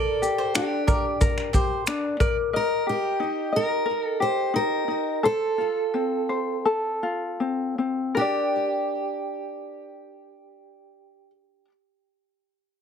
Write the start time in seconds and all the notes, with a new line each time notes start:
Already playing: A4 A#4 D5
0.22 G4, shaker
0.38 C5
0.55 D4 G4, finger snap, shaker
0.87 A#4 D5, kick, shaker
1.21 A#4, kick, shaker
1.38 finger snap
1.53 G4 C5, kick, shaker
1.87 D4, finger snap, shaker
2.20 A#4 D5, kick, shaker
2.53 A#4 D#5
2.87 G4
3.20 D#4
3.52 A#4 D#5
3.86 A#4
4.04 A4
4.20 G4 C5
4.54 D#4 A#4
4.88 D#4
5.23 A4 C5
5.58 F4
5.94 C4
6.29 C5
6.65 A4
7.03 F4
7.40 C4
7.78 C4
8.15 D4 G4 A#4
8.19 G4 D5